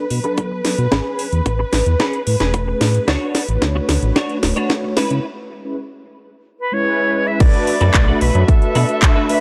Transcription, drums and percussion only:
0.10 open hi-hat
0.24 closed hi-hat
0.38 kick, closed hi-hat
0.65 snare, open hi-hat
0.78 closed hi-hat
0.92 kick, snare, closed hi-hat
1.19 open hi-hat
1.32 closed hi-hat
1.46 kick, closed hi-hat
1.73 snare, open hi-hat
1.86 closed hi-hat
2.00 kick, snare, closed hi-hat
2.13 closed hi-hat
2.27 open hi-hat
2.40 snare, closed hi-hat
2.54 kick, closed hi-hat
2.81 snare, open hi-hat
2.94 closed hi-hat
3.08 kick, snare, closed hi-hat
3.35 snare, open hi-hat
3.48 closed hi-hat
3.62 kick, snare, closed hi-hat
3.89 snare, open hi-hat
4.03 closed hi-hat
4.16 kick, snare, closed hi-hat
4.30 closed hi-hat
4.43 snare, open hi-hat
4.57 closed hi-hat
4.70 kick, snare, closed hi-hat
4.97 snare, open hi-hat
5.10 closed hi-hat
7.40 kick, closed hi-hat, crash
7.54 closed hi-hat
7.67 open hi-hat
7.81 closed hi-hat
7.94 kick, clap, closed hi-hat
8.21 open hi-hat
8.35 closed hi-hat
8.48 kick, closed hi-hat
8.62 closed hi-hat
8.75 open hi-hat
8.89 closed hi-hat
9.02 kick, clap, closed hi-hat
9.29 open hi-hat

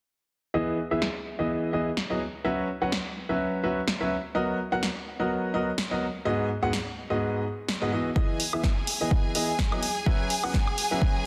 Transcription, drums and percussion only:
1.02 snare
1.97 snare
2.92 snare
3.88 snare
4.83 snare
5.78 snare
6.73 snare
7.68 snare
8.16 kick
8.40 open hi-hat
8.53 high woodblock
8.64 kick, snare
8.87 open hi-hat
9.11 kick
9.35 open hi-hat
9.59 kick, snare
9.72 high woodblock
9.83 open hi-hat
10.06 kick
10.30 open hi-hat
10.44 open hi-hat, high woodblock
10.54 kick, snare
10.67 high woodblock
10.78 open hi-hat
11.02 kick

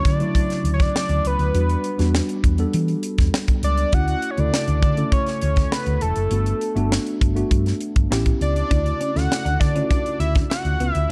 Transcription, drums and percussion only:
0.05 kick, snare, closed hi-hat
0.20 closed hi-hat
0.35 kick, closed hi-hat
0.50 snare, closed hi-hat
0.65 closed hi-hat
0.80 kick, snare, closed hi-hat
0.96 snare
1.09 closed hi-hat
1.25 closed hi-hat
1.39 closed hi-hat
1.55 closed hi-hat
1.69 closed hi-hat
1.84 closed hi-hat
1.99 snare, closed hi-hat
2.15 snare
2.29 closed hi-hat
2.44 kick, closed hi-hat
2.58 closed hi-hat
2.73 closed hi-hat
2.88 closed hi-hat
3.03 closed hi-hat
3.18 kick, snare, closed hi-hat
3.34 snare
3.48 kick, closed hi-hat
3.63 closed hi-hat
3.78 closed hi-hat
3.92 kick, closed hi-hat
4.08 closed hi-hat
4.22 closed hi-hat
4.38 closed hi-hat
4.54 snare
4.68 closed hi-hat
4.83 kick, closed hi-hat
4.97 closed hi-hat
5.12 kick, closed hi-hat
5.27 snare, closed hi-hat
5.42 closed hi-hat
5.56 kick, snare, closed hi-hat
5.72 snare
5.86 closed hi-hat
6.01 closed hi-hat
6.16 closed hi-hat
6.31 closed hi-hat
6.46 closed hi-hat
6.61 closed hi-hat
6.77 closed hi-hat
6.92 snare
7.07 closed hi-hat
7.21 kick, closed hi-hat
7.36 closed hi-hat
7.51 kick, closed hi-hat
7.66 snare, closed hi-hat
7.81 closed hi-hat
7.96 kick, closed hi-hat
8.12 snare
8.26 kick, closed hi-hat
8.41 closed hi-hat
8.56 closed hi-hat
8.71 kick, closed hi-hat
8.86 closed hi-hat
9.01 closed hi-hat
9.16 snare, closed hi-hat
9.32 snare
9.46 closed hi-hat
9.61 kick, snare, closed hi-hat
9.76 closed hi-hat
9.91 kick, closed hi-hat
10.06 closed hi-hat
10.20 closed hi-hat
10.35 kick, snare, closed hi-hat
10.51 snare
10.65 closed hi-hat
10.80 closed hi-hat
10.95 closed hi-hat

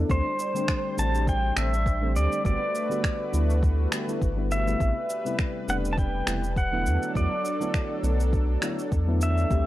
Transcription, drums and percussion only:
0.10 kick, shaker
0.39 shaker
0.56 shaker
0.68 finger snap, kick, shaker
0.98 shaker
1.15 shaker
1.27 kick, shaker
1.57 finger snap, shaker
1.74 shaker
1.86 kick, shaker
2.16 shaker
2.32 shaker
2.45 kick, shaker
2.75 shaker
2.91 shaker
3.04 finger snap, kick, shaker
3.34 shaker
3.50 shaker
3.63 kick, shaker
3.92 finger snap, shaker
4.09 shaker
4.21 kick, shaker
4.51 shaker
4.68 shaker
4.80 kick, shaker
5.10 shaker
5.26 shaker
5.39 finger snap, kick, shaker
5.69 shaker
5.85 shaker
5.98 kick, shaker
6.27 finger snap, shaker
6.44 shaker
6.56 kick, shaker
6.86 shaker
7.03 shaker
7.15 kick, shaker
7.45 shaker
7.61 shaker
7.74 finger snap, kick, shaker
8.04 shaker
8.20 shaker
8.33 kick, shaker
8.62 finger snap, shaker
8.79 shaker
8.92 kick, shaker
9.21 shaker
9.38 shaker
9.51 kick, shaker

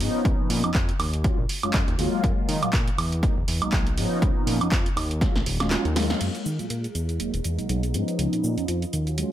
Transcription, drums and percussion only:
0.00 open hi-hat
0.25 kick, closed hi-hat
0.50 open hi-hat
0.64 closed hi-hat, high woodblock
0.74 kick, clap, closed hi-hat
0.89 closed hi-hat
1.00 open hi-hat, high woodblock
1.14 closed hi-hat
1.24 kick, closed hi-hat
1.49 open hi-hat
1.63 closed hi-hat, high woodblock
1.74 kick, clap, closed hi-hat
1.88 closed hi-hat
1.99 open hi-hat
2.24 kick, closed hi-hat
2.49 open hi-hat
2.63 closed hi-hat, high woodblock
2.73 kick, clap, closed hi-hat
2.88 closed hi-hat
2.98 open hi-hat, high woodblock
3.12 closed hi-hat
3.23 kick, closed hi-hat
3.48 open hi-hat
3.62 closed hi-hat, high woodblock
3.72 kick, clap, closed hi-hat
3.87 closed hi-hat
3.98 open hi-hat
4.22 kick, closed hi-hat
4.47 open hi-hat
4.61 closed hi-hat, high woodblock
4.72 kick, clap, closed hi-hat
4.86 closed hi-hat
4.97 open hi-hat, high woodblock
5.11 closed hi-hat
5.21 kick, snare, closed hi-hat
5.36 snare
5.46 open hi-hat
5.60 snare, closed hi-hat, high woodblock
5.71 snare, clap, closed hi-hat
5.85 closed hi-hat
5.96 snare, open hi-hat
6.10 snare
6.21 closed hi-hat, crash, shaker
6.35 closed hi-hat, shaker
6.46 shaker
6.59 closed hi-hat, shaker
6.70 closed hi-hat, shaker
6.84 closed hi-hat, shaker
6.95 closed hi-hat, shaker
7.09 closed hi-hat, shaker
7.20 closed hi-hat, shaker
7.34 closed hi-hat, shaker
7.44 closed hi-hat, shaker
7.59 closed hi-hat, shaker
7.69 closed hi-hat, shaker
7.83 closed hi-hat, shaker
7.94 closed hi-hat, shaker
8.08 closed hi-hat, shaker
8.19 closed hi-hat, shaker
8.33 closed hi-hat, shaker
8.44 shaker
8.58 closed hi-hat, shaker
8.68 closed hi-hat, shaker
8.82 closed hi-hat, shaker
8.93 closed hi-hat, shaker
9.07 closed hi-hat, shaker
9.18 closed hi-hat, shaker

